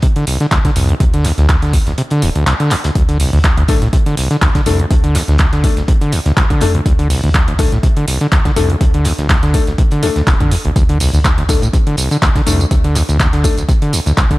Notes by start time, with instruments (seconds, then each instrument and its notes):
0.02 acid bass C3, kick, closed hi-hat
0.16 acid bass D3, closed hi-hat
0.27 acid bass C2, closed hi-hat, open hi-hat
0.40 acid bass D3, snare, closed hi-hat
0.51 acid bass D2, kick, snare, clap, closed hi-hat
0.64 acid bass D3, kick, snare, closed hi-hat
0.76 acid bass C2, sub bass F2, closed hi-hat, open hi-hat
0.89 acid bass D2, closed hi-hat
1.00 sub bass D2, acid bass C3, kick, closed hi-hat
1.14 acid bass D3, closed hi-hat
1.24 acid bass D2, snare, clap, closed hi-hat, open hi-hat
1.38 sub bass D2, acid bass D2, snare, closed hi-hat
1.49 acid bass D2, kick, snare, clap, closed hi-hat
1.62 acid bass D3, snare, closed hi-hat
1.73 acid bass D2, kick, closed hi-hat, open hi-hat
1.86 sub bass C2, acid bass D2, snare, closed hi-hat
1.98 acid bass C3, closed hi-hat
2.10 acid bass D3, closed hi-hat
2.22 sub bass D1, acid bass D2, open hi-hat
2.36 acid bass D2, closed hi-hat
2.47 acid bass C2, snare, clap, closed hi-hat
2.60 acid bass D3, closed hi-hat
2.71 acid bass D2, clap, closed hi-hat, open hi-hat
2.84 acid bass D2, snare, closed hi-hat
2.95 acid bass D2, sub bass D2, kick, closed hi-hat
3.09 acid bass D3, closed hi-hat
3.20 acid bass C2, open hi-hat
3.33 acid bass D2, sub bass D2, closed hi-hat
3.44 acid bass D2, kick, snare, clap, closed hi-hat
3.58 acid bass D2, closed hi-hat
3.68 acid bass D1, grand piano A3 D4 A4, kick, snare, clap, closed hi-hat, open hi-hat
3.82 sub bass C2, acid bass A2, snare, closed hi-hat
3.93 acid bass C3, kick, closed hi-hat
4.06 acid bass D3, closed hi-hat
4.17 acid bass C2, closed hi-hat, open hi-hat
4.31 acid bass D3, snare, closed hi-hat
4.41 acid bass D2, kick, snare, clap, closed hi-hat
4.55 acid bass D3, kick, snare, closed hi-hat
4.66 acid bass C2, sub bass F2, grand piano A3 D4 A4, closed hi-hat, open hi-hat
4.79 acid bass D2, closed hi-hat
4.91 sub bass D2, acid bass C3, kick, closed hi-hat
5.04 acid bass D3, closed hi-hat
5.15 acid bass D2, snare, clap, closed hi-hat, open hi-hat
5.28 acid bass D2, sub bass D2, snare, closed hi-hat
5.38 kick, snare, clap, closed hi-hat
5.53 acid bass D3, snare, closed hi-hat
5.64 acid bass D2, grand piano A3 D4 A4, kick, closed hi-hat, open hi-hat
5.77 sub bass C2, acid bass D2, snare, closed hi-hat
5.88 acid bass C3, kick, closed hi-hat
6.01 acid bass D3, closed hi-hat
6.12 acid bass D2, closed hi-hat, open hi-hat
6.26 acid bass D2, snare, closed hi-hat
6.37 acid bass C2, kick, snare, clap, closed hi-hat
6.50 acid bass D3, kick, closed hi-hat
6.61 acid bass D2, sub bass F2, grand piano A3 D4 A4, closed hi-hat, open hi-hat
6.75 acid bass D2, closed hi-hat
6.86 acid bass D2, sub bass D2, kick, closed hi-hat
6.99 acid bass D3, closed hi-hat
7.10 acid bass C2, open hi-hat
7.23 acid bass D2, sub bass D2, closed hi-hat
7.34 acid bass D2, kick, snare, clap, closed hi-hat
7.48 acid bass D2, closed hi-hat
7.59 acid bass D1, grand piano A3 D4 A4, kick, snare, clap, closed hi-hat, open hi-hat
7.72 sub bass C2, acid bass A2, snare, closed hi-hat
7.83 acid bass C3, kick, closed hi-hat
7.97 acid bass D3, closed hi-hat
8.08 acid bass C2, closed hi-hat, open hi-hat
8.20 acid bass D3, snare, closed hi-hat
8.32 acid bass D2, kick, snare, clap, closed hi-hat
8.45 acid bass D3, kick, snare, closed hi-hat
8.56 acid bass C2, sub bass F2, grand piano A3 D4 A4, closed hi-hat, open hi-hat
8.70 acid bass D2, closed hi-hat
8.81 sub bass D2, acid bass C3, kick, closed hi-hat
8.94 acid bass D3, closed hi-hat
9.05 acid bass D2, snare, clap, closed hi-hat, open hi-hat
9.18 sub bass D2, acid bass D2, snare, closed hi-hat
9.29 acid bass D2, kick, snare, clap, closed hi-hat
9.43 acid bass D3, snare, closed hi-hat
9.54 acid bass D2, grand piano A3 D4 A4, kick, closed hi-hat, open hi-hat
9.67 sub bass C2, acid bass D2, snare, closed hi-hat
9.78 acid bass C3, kick, closed hi-hat
9.91 acid bass D3, closed hi-hat
10.03 acid bass D2, grand piano A3 D4 A4, closed hi-hat, open hi-hat
10.16 acid bass D2, snare, closed hi-hat
10.27 sub bass D1, acid bass C2, kick, snare, clap, closed hi-hat
10.40 sub bass F2, acid bass D3, kick, closed hi-hat
10.51 acid bass D2, closed hi-hat, open hi-hat
10.65 sub bass A1, acid bass D2, closed hi-hat
10.76 acid bass D2, sub bass D2, kick, closed hi-hat, tambourine
10.89 acid bass D3, closed hi-hat
11.00 acid bass C2, open hi-hat, tambourine
11.14 acid bass D2, sub bass D2, closed hi-hat, tambourine
11.24 acid bass D2, kick, snare, clap, closed hi-hat, tambourine
11.38 acid bass D2, closed hi-hat
11.49 acid bass D1, grand piano A3 D4 A4, kick, snare, clap, closed hi-hat, open hi-hat, tambourine
11.62 sub bass C2, acid bass A2, snare, closed hi-hat, tambourine
11.73 acid bass C3, kick, closed hi-hat, tambourine
11.87 acid bass D3, closed hi-hat
11.97 acid bass C2, closed hi-hat, open hi-hat, tambourine
12.11 acid bass D3, snare, closed hi-hat, tambourine
12.22 acid bass D2, kick, snare, clap, closed hi-hat, tambourine
12.35 acid bass D3, kick, snare, closed hi-hat
12.46 acid bass C2, sub bass F2, grand piano A3 D4 A4, closed hi-hat, open hi-hat, tambourine
12.60 acid bass D2, closed hi-hat, tambourine
12.71 sub bass D2, acid bass C3, kick, closed hi-hat, tambourine
12.84 acid bass D3, closed hi-hat
12.95 acid bass D2, snare, clap, closed hi-hat, open hi-hat, tambourine
13.08 acid bass D2, sub bass D2, snare, closed hi-hat, tambourine
13.20 acid bass D2, kick, snare, clap, closed hi-hat, tambourine
13.33 acid bass D3, snare, closed hi-hat
13.44 acid bass D2, grand piano A3 D4 A4, kick, closed hi-hat, open hi-hat, tambourine
13.57 sub bass C2, acid bass D2, snare, closed hi-hat, tambourine
13.69 acid bass C3, kick, closed hi-hat, tambourine
13.82 acid bass D3, closed hi-hat
13.93 acid bass D2, closed hi-hat, open hi-hat, tambourine
14.06 acid bass D2, snare, closed hi-hat, tambourine
14.17 acid bass C2, kick, snare, clap, closed hi-hat, tambourine
14.31 acid bass D3, kick, closed hi-hat